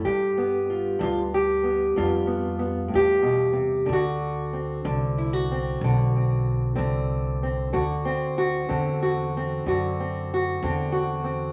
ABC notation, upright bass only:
X:1
M:12/8
L:1/8
Q:3/8=62
K:Dmix
V:1 name="Upright bass" clef=bass
G,,3 D,,3 =F,,3 E,,3 | D,,3 C,,3 B,,,3 C,,3 | D,,3 E,,3 F,,3 E,,3 |]